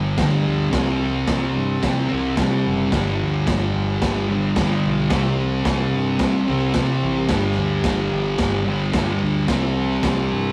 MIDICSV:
0, 0, Header, 1, 5, 480
1, 0, Start_track
1, 0, Tempo, 546946
1, 644, Time_signature, 4, 2, 24, 8
1, 9236, End_track
2, 0, Start_track
2, 0, Title_t, "Transistor combo organ"
2, 0, Program_c, 0, 18
2, 0, Note_on_c, 0, 62, 87
2, 0, Note_on_c, 0, 67, 81
2, 0, Note_on_c, 0, 71, 93
2, 105, Note_off_c, 0, 71, 0
2, 106, Note_off_c, 0, 62, 0
2, 107, Note_off_c, 0, 67, 0
2, 173, Note_on_c, 0, 69, 97
2, 178, Note_on_c, 0, 67, 76
2, 182, Note_on_c, 0, 62, 83
2, 596, Note_off_c, 0, 69, 0
2, 599, Note_off_c, 0, 67, 0
2, 601, Note_off_c, 0, 62, 0
2, 648, Note_on_c, 0, 64, 94
2, 655, Note_on_c, 0, 67, 78
2, 662, Note_on_c, 0, 72, 95
2, 1075, Note_off_c, 0, 64, 0
2, 1078, Note_off_c, 0, 67, 0
2, 1082, Note_off_c, 0, 72, 0
2, 1126, Note_on_c, 0, 64, 81
2, 1126, Note_on_c, 0, 72, 93
2, 1136, Note_on_c, 0, 67, 81
2, 1389, Note_on_c, 0, 84, 75
2, 1554, Note_off_c, 0, 64, 0
2, 1554, Note_off_c, 0, 72, 0
2, 1560, Note_off_c, 0, 67, 0
2, 1602, Note_off_c, 0, 84, 0
2, 1624, Note_on_c, 0, 79, 75
2, 1625, Note_on_c, 0, 72, 105
2, 1628, Note_on_c, 0, 67, 85
2, 1633, Note_on_c, 0, 64, 88
2, 1840, Note_off_c, 0, 79, 0
2, 1843, Note_on_c, 0, 81, 75
2, 2045, Note_off_c, 0, 72, 0
2, 2046, Note_off_c, 0, 67, 0
2, 2049, Note_off_c, 0, 64, 0
2, 2069, Note_off_c, 0, 81, 0
2, 2107, Note_on_c, 0, 67, 74
2, 2114, Note_on_c, 0, 71, 96
2, 2114, Note_on_c, 0, 79, 72
2, 2118, Note_on_c, 0, 64, 88
2, 2214, Note_off_c, 0, 79, 0
2, 2229, Note_on_c, 0, 78, 71
2, 2332, Note_off_c, 0, 78, 0
2, 2345, Note_on_c, 0, 76, 78
2, 2526, Note_off_c, 0, 67, 0
2, 2529, Note_off_c, 0, 71, 0
2, 2531, Note_off_c, 0, 64, 0
2, 2561, Note_off_c, 0, 76, 0
2, 2580, Note_on_c, 0, 62, 84
2, 2580, Note_on_c, 0, 67, 76
2, 2584, Note_on_c, 0, 71, 103
2, 3002, Note_off_c, 0, 62, 0
2, 3003, Note_off_c, 0, 67, 0
2, 3005, Note_off_c, 0, 71, 0
2, 3061, Note_on_c, 0, 62, 86
2, 3066, Note_on_c, 0, 67, 80
2, 3071, Note_on_c, 0, 71, 90
2, 3483, Note_off_c, 0, 62, 0
2, 3486, Note_off_c, 0, 67, 0
2, 3488, Note_off_c, 0, 71, 0
2, 3540, Note_on_c, 0, 62, 94
2, 3542, Note_on_c, 0, 67, 88
2, 3542, Note_on_c, 0, 71, 93
2, 3963, Note_off_c, 0, 62, 0
2, 3964, Note_off_c, 0, 67, 0
2, 3964, Note_off_c, 0, 71, 0
2, 4021, Note_on_c, 0, 71, 95
2, 4022, Note_on_c, 0, 62, 85
2, 4023, Note_on_c, 0, 67, 81
2, 4443, Note_off_c, 0, 71, 0
2, 4444, Note_off_c, 0, 62, 0
2, 4444, Note_off_c, 0, 67, 0
2, 4494, Note_on_c, 0, 64, 85
2, 4495, Note_on_c, 0, 67, 84
2, 4510, Note_on_c, 0, 72, 93
2, 4920, Note_off_c, 0, 64, 0
2, 4920, Note_off_c, 0, 67, 0
2, 4928, Note_off_c, 0, 72, 0
2, 4965, Note_on_c, 0, 72, 88
2, 4967, Note_on_c, 0, 64, 91
2, 4967, Note_on_c, 0, 67, 71
2, 5395, Note_off_c, 0, 72, 0
2, 5396, Note_off_c, 0, 64, 0
2, 5396, Note_off_c, 0, 67, 0
2, 5434, Note_on_c, 0, 72, 93
2, 5437, Note_on_c, 0, 64, 89
2, 5439, Note_on_c, 0, 67, 87
2, 5869, Note_off_c, 0, 72, 0
2, 5870, Note_off_c, 0, 64, 0
2, 5871, Note_off_c, 0, 67, 0
2, 5911, Note_on_c, 0, 67, 81
2, 5912, Note_on_c, 0, 72, 99
2, 5913, Note_on_c, 0, 64, 78
2, 6347, Note_off_c, 0, 67, 0
2, 6347, Note_off_c, 0, 72, 0
2, 6348, Note_off_c, 0, 64, 0
2, 6396, Note_on_c, 0, 62, 84
2, 6398, Note_on_c, 0, 67, 80
2, 6401, Note_on_c, 0, 71, 94
2, 6829, Note_off_c, 0, 62, 0
2, 6830, Note_off_c, 0, 67, 0
2, 6831, Note_off_c, 0, 71, 0
2, 6885, Note_on_c, 0, 71, 89
2, 6891, Note_on_c, 0, 62, 87
2, 6897, Note_on_c, 0, 67, 82
2, 7313, Note_off_c, 0, 71, 0
2, 7316, Note_off_c, 0, 62, 0
2, 7319, Note_off_c, 0, 67, 0
2, 7361, Note_on_c, 0, 71, 93
2, 7367, Note_on_c, 0, 62, 84
2, 7373, Note_on_c, 0, 67, 87
2, 7790, Note_off_c, 0, 71, 0
2, 7794, Note_off_c, 0, 62, 0
2, 7797, Note_off_c, 0, 67, 0
2, 7856, Note_on_c, 0, 62, 84
2, 7859, Note_on_c, 0, 71, 92
2, 7868, Note_on_c, 0, 67, 75
2, 8277, Note_off_c, 0, 62, 0
2, 8279, Note_off_c, 0, 71, 0
2, 8283, Note_off_c, 0, 67, 0
2, 8325, Note_on_c, 0, 72, 96
2, 8327, Note_on_c, 0, 67, 78
2, 8341, Note_on_c, 0, 64, 83
2, 8751, Note_off_c, 0, 72, 0
2, 8752, Note_off_c, 0, 67, 0
2, 8759, Note_off_c, 0, 64, 0
2, 8783, Note_on_c, 0, 64, 80
2, 8789, Note_on_c, 0, 67, 76
2, 8793, Note_on_c, 0, 72, 95
2, 9220, Note_off_c, 0, 64, 0
2, 9223, Note_off_c, 0, 67, 0
2, 9225, Note_off_c, 0, 72, 0
2, 9236, End_track
3, 0, Start_track
3, 0, Title_t, "Distorted electric guitar"
3, 0, Program_c, 1, 30
3, 0, Note_on_c, 1, 43, 84
3, 0, Note_on_c, 1, 50, 75
3, 0, Note_on_c, 1, 55, 84
3, 153, Note_off_c, 1, 43, 0
3, 153, Note_off_c, 1, 50, 0
3, 163, Note_on_c, 1, 43, 80
3, 192, Note_on_c, 1, 50, 84
3, 202, Note_off_c, 1, 55, 0
3, 205, Note_on_c, 1, 55, 91
3, 619, Note_off_c, 1, 50, 0
3, 622, Note_on_c, 1, 48, 86
3, 630, Note_off_c, 1, 43, 0
3, 651, Note_off_c, 1, 55, 0
3, 654, Note_on_c, 1, 55, 81
3, 672, Note_on_c, 1, 60, 102
3, 1819, Note_off_c, 1, 60, 0
3, 1823, Note_off_c, 1, 48, 0
3, 1830, Note_on_c, 1, 60, 100
3, 1850, Note_off_c, 1, 55, 0
3, 1854, Note_on_c, 1, 55, 87
3, 1876, Note_on_c, 1, 48, 70
3, 2058, Note_off_c, 1, 48, 0
3, 2065, Note_off_c, 1, 60, 0
3, 2069, Note_on_c, 1, 48, 71
3, 2093, Note_off_c, 1, 55, 0
3, 2096, Note_on_c, 1, 55, 89
3, 2111, Note_on_c, 1, 60, 84
3, 2545, Note_off_c, 1, 48, 0
3, 2552, Note_on_c, 1, 43, 91
3, 2567, Note_off_c, 1, 60, 0
3, 2569, Note_on_c, 1, 50, 93
3, 2587, Note_off_c, 1, 55, 0
3, 2590, Note_on_c, 1, 55, 101
3, 3748, Note_off_c, 1, 43, 0
3, 3757, Note_off_c, 1, 50, 0
3, 3760, Note_off_c, 1, 55, 0
3, 3764, Note_on_c, 1, 55, 80
3, 3787, Note_on_c, 1, 50, 78
3, 3812, Note_on_c, 1, 43, 75
3, 4001, Note_off_c, 1, 43, 0
3, 4005, Note_off_c, 1, 50, 0
3, 4012, Note_on_c, 1, 43, 84
3, 4033, Note_on_c, 1, 50, 73
3, 4054, Note_off_c, 1, 55, 0
3, 4057, Note_on_c, 1, 55, 94
3, 4477, Note_off_c, 1, 43, 0
3, 4483, Note_off_c, 1, 50, 0
3, 4487, Note_on_c, 1, 48, 86
3, 4509, Note_off_c, 1, 55, 0
3, 4512, Note_on_c, 1, 55, 104
3, 4528, Note_on_c, 1, 60, 97
3, 5669, Note_off_c, 1, 60, 0
3, 5674, Note_off_c, 1, 48, 0
3, 5679, Note_on_c, 1, 60, 85
3, 5701, Note_off_c, 1, 55, 0
3, 5704, Note_on_c, 1, 55, 82
3, 5722, Note_on_c, 1, 48, 73
3, 5910, Note_off_c, 1, 60, 0
3, 5911, Note_off_c, 1, 48, 0
3, 5922, Note_on_c, 1, 48, 77
3, 5938, Note_off_c, 1, 55, 0
3, 5941, Note_on_c, 1, 55, 81
3, 5966, Note_on_c, 1, 60, 79
3, 6391, Note_off_c, 1, 48, 0
3, 6393, Note_on_c, 1, 43, 91
3, 6413, Note_off_c, 1, 60, 0
3, 6420, Note_on_c, 1, 50, 89
3, 6436, Note_off_c, 1, 55, 0
3, 6440, Note_on_c, 1, 55, 110
3, 7583, Note_off_c, 1, 55, 0
3, 7584, Note_off_c, 1, 43, 0
3, 7587, Note_on_c, 1, 55, 86
3, 7598, Note_off_c, 1, 50, 0
3, 7616, Note_on_c, 1, 50, 78
3, 7630, Note_on_c, 1, 43, 79
3, 7822, Note_off_c, 1, 43, 0
3, 7832, Note_on_c, 1, 43, 80
3, 7837, Note_off_c, 1, 50, 0
3, 7863, Note_on_c, 1, 50, 93
3, 7880, Note_off_c, 1, 55, 0
3, 7883, Note_on_c, 1, 55, 92
3, 8304, Note_off_c, 1, 43, 0
3, 8310, Note_off_c, 1, 50, 0
3, 8314, Note_on_c, 1, 48, 87
3, 8333, Note_off_c, 1, 55, 0
3, 8336, Note_on_c, 1, 55, 97
3, 8354, Note_on_c, 1, 60, 105
3, 9236, Note_off_c, 1, 48, 0
3, 9236, Note_off_c, 1, 55, 0
3, 9236, Note_off_c, 1, 60, 0
3, 9236, End_track
4, 0, Start_track
4, 0, Title_t, "Fingered electric bass"
4, 0, Program_c, 2, 33
4, 0, Note_on_c, 2, 31, 94
4, 146, Note_off_c, 2, 31, 0
4, 158, Note_on_c, 2, 43, 93
4, 393, Note_off_c, 2, 43, 0
4, 414, Note_on_c, 2, 38, 94
4, 635, Note_off_c, 2, 38, 0
4, 641, Note_on_c, 2, 36, 105
4, 1109, Note_off_c, 2, 36, 0
4, 1127, Note_on_c, 2, 36, 91
4, 1360, Note_off_c, 2, 36, 0
4, 1373, Note_on_c, 2, 43, 97
4, 1600, Note_off_c, 2, 43, 0
4, 1605, Note_on_c, 2, 48, 98
4, 1839, Note_off_c, 2, 48, 0
4, 1864, Note_on_c, 2, 36, 92
4, 2081, Note_off_c, 2, 36, 0
4, 2087, Note_on_c, 2, 48, 99
4, 2321, Note_off_c, 2, 48, 0
4, 2336, Note_on_c, 2, 30, 98
4, 2563, Note_off_c, 2, 30, 0
4, 2568, Note_on_c, 2, 31, 99
4, 2802, Note_off_c, 2, 31, 0
4, 2823, Note_on_c, 2, 38, 98
4, 3042, Note_off_c, 2, 38, 0
4, 3047, Note_on_c, 2, 31, 92
4, 3281, Note_off_c, 2, 31, 0
4, 3295, Note_on_c, 2, 31, 95
4, 3521, Note_off_c, 2, 31, 0
4, 3527, Note_on_c, 2, 31, 94
4, 3994, Note_off_c, 2, 31, 0
4, 4005, Note_on_c, 2, 43, 93
4, 4241, Note_off_c, 2, 43, 0
4, 4259, Note_on_c, 2, 35, 97
4, 4481, Note_off_c, 2, 35, 0
4, 4487, Note_on_c, 2, 36, 98
4, 4954, Note_off_c, 2, 36, 0
4, 4965, Note_on_c, 2, 36, 94
4, 5200, Note_off_c, 2, 36, 0
4, 5213, Note_on_c, 2, 43, 90
4, 5440, Note_off_c, 2, 43, 0
4, 5446, Note_on_c, 2, 48, 94
4, 5680, Note_off_c, 2, 48, 0
4, 5688, Note_on_c, 2, 36, 81
4, 5916, Note_off_c, 2, 36, 0
4, 5921, Note_on_c, 2, 48, 93
4, 6158, Note_off_c, 2, 48, 0
4, 6170, Note_on_c, 2, 33, 92
4, 6396, Note_off_c, 2, 33, 0
4, 6401, Note_on_c, 2, 31, 102
4, 6637, Note_off_c, 2, 31, 0
4, 6650, Note_on_c, 2, 38, 96
4, 6878, Note_off_c, 2, 38, 0
4, 6884, Note_on_c, 2, 31, 86
4, 7118, Note_off_c, 2, 31, 0
4, 7133, Note_on_c, 2, 31, 96
4, 7363, Note_off_c, 2, 31, 0
4, 7367, Note_on_c, 2, 31, 91
4, 7831, Note_off_c, 2, 31, 0
4, 7843, Note_on_c, 2, 43, 93
4, 8077, Note_off_c, 2, 43, 0
4, 8097, Note_on_c, 2, 38, 102
4, 8317, Note_off_c, 2, 38, 0
4, 8323, Note_on_c, 2, 36, 101
4, 8788, Note_off_c, 2, 36, 0
4, 8802, Note_on_c, 2, 36, 91
4, 9036, Note_off_c, 2, 36, 0
4, 9059, Note_on_c, 2, 43, 91
4, 9236, Note_off_c, 2, 43, 0
4, 9236, End_track
5, 0, Start_track
5, 0, Title_t, "Drums"
5, 154, Note_on_c, 9, 49, 61
5, 156, Note_on_c, 9, 36, 118
5, 156, Note_on_c, 9, 38, 115
5, 242, Note_off_c, 9, 49, 0
5, 244, Note_off_c, 9, 36, 0
5, 244, Note_off_c, 9, 38, 0
5, 638, Note_on_c, 9, 49, 61
5, 639, Note_on_c, 9, 36, 118
5, 640, Note_on_c, 9, 38, 114
5, 726, Note_off_c, 9, 49, 0
5, 727, Note_off_c, 9, 36, 0
5, 727, Note_off_c, 9, 38, 0
5, 1117, Note_on_c, 9, 49, 64
5, 1119, Note_on_c, 9, 38, 124
5, 1121, Note_on_c, 9, 36, 123
5, 1205, Note_off_c, 9, 49, 0
5, 1207, Note_off_c, 9, 38, 0
5, 1209, Note_off_c, 9, 36, 0
5, 1603, Note_on_c, 9, 36, 108
5, 1606, Note_on_c, 9, 49, 62
5, 1607, Note_on_c, 9, 38, 111
5, 1691, Note_off_c, 9, 36, 0
5, 1693, Note_off_c, 9, 49, 0
5, 1695, Note_off_c, 9, 38, 0
5, 2080, Note_on_c, 9, 49, 63
5, 2081, Note_on_c, 9, 38, 116
5, 2083, Note_on_c, 9, 36, 122
5, 2167, Note_off_c, 9, 49, 0
5, 2169, Note_off_c, 9, 38, 0
5, 2171, Note_off_c, 9, 36, 0
5, 2562, Note_on_c, 9, 49, 67
5, 2564, Note_on_c, 9, 38, 117
5, 2565, Note_on_c, 9, 36, 112
5, 2650, Note_off_c, 9, 49, 0
5, 2651, Note_off_c, 9, 38, 0
5, 2652, Note_off_c, 9, 36, 0
5, 3045, Note_on_c, 9, 36, 117
5, 3047, Note_on_c, 9, 49, 63
5, 3049, Note_on_c, 9, 38, 124
5, 3133, Note_off_c, 9, 36, 0
5, 3135, Note_off_c, 9, 49, 0
5, 3137, Note_off_c, 9, 38, 0
5, 3525, Note_on_c, 9, 36, 105
5, 3526, Note_on_c, 9, 49, 65
5, 3527, Note_on_c, 9, 38, 105
5, 3613, Note_off_c, 9, 36, 0
5, 3613, Note_off_c, 9, 49, 0
5, 3615, Note_off_c, 9, 38, 0
5, 4002, Note_on_c, 9, 36, 119
5, 4003, Note_on_c, 9, 49, 66
5, 4005, Note_on_c, 9, 38, 112
5, 4090, Note_off_c, 9, 36, 0
5, 4091, Note_off_c, 9, 49, 0
5, 4093, Note_off_c, 9, 38, 0
5, 4477, Note_on_c, 9, 49, 61
5, 4479, Note_on_c, 9, 38, 117
5, 4481, Note_on_c, 9, 36, 124
5, 4565, Note_off_c, 9, 49, 0
5, 4567, Note_off_c, 9, 38, 0
5, 4569, Note_off_c, 9, 36, 0
5, 4960, Note_on_c, 9, 36, 115
5, 4961, Note_on_c, 9, 49, 60
5, 4963, Note_on_c, 9, 38, 109
5, 5048, Note_off_c, 9, 36, 0
5, 5049, Note_off_c, 9, 49, 0
5, 5050, Note_off_c, 9, 38, 0
5, 5433, Note_on_c, 9, 49, 61
5, 5435, Note_on_c, 9, 38, 111
5, 5439, Note_on_c, 9, 36, 107
5, 5521, Note_off_c, 9, 49, 0
5, 5523, Note_off_c, 9, 38, 0
5, 5527, Note_off_c, 9, 36, 0
5, 5912, Note_on_c, 9, 49, 70
5, 5914, Note_on_c, 9, 38, 119
5, 5919, Note_on_c, 9, 36, 116
5, 6000, Note_off_c, 9, 49, 0
5, 6002, Note_off_c, 9, 38, 0
5, 6006, Note_off_c, 9, 36, 0
5, 6393, Note_on_c, 9, 49, 68
5, 6395, Note_on_c, 9, 38, 116
5, 6399, Note_on_c, 9, 36, 110
5, 6481, Note_off_c, 9, 49, 0
5, 6483, Note_off_c, 9, 38, 0
5, 6487, Note_off_c, 9, 36, 0
5, 6877, Note_on_c, 9, 49, 70
5, 6879, Note_on_c, 9, 38, 113
5, 6882, Note_on_c, 9, 36, 112
5, 6965, Note_off_c, 9, 49, 0
5, 6967, Note_off_c, 9, 38, 0
5, 6969, Note_off_c, 9, 36, 0
5, 7357, Note_on_c, 9, 49, 63
5, 7358, Note_on_c, 9, 38, 110
5, 7362, Note_on_c, 9, 36, 111
5, 7444, Note_off_c, 9, 49, 0
5, 7446, Note_off_c, 9, 38, 0
5, 7450, Note_off_c, 9, 36, 0
5, 7841, Note_on_c, 9, 36, 110
5, 7841, Note_on_c, 9, 49, 62
5, 7843, Note_on_c, 9, 38, 114
5, 7929, Note_off_c, 9, 36, 0
5, 7929, Note_off_c, 9, 49, 0
5, 7931, Note_off_c, 9, 38, 0
5, 8320, Note_on_c, 9, 49, 58
5, 8322, Note_on_c, 9, 36, 110
5, 8322, Note_on_c, 9, 38, 111
5, 8408, Note_off_c, 9, 49, 0
5, 8410, Note_off_c, 9, 36, 0
5, 8410, Note_off_c, 9, 38, 0
5, 8803, Note_on_c, 9, 36, 115
5, 8806, Note_on_c, 9, 49, 61
5, 8807, Note_on_c, 9, 38, 113
5, 8891, Note_off_c, 9, 36, 0
5, 8893, Note_off_c, 9, 49, 0
5, 8895, Note_off_c, 9, 38, 0
5, 9236, End_track
0, 0, End_of_file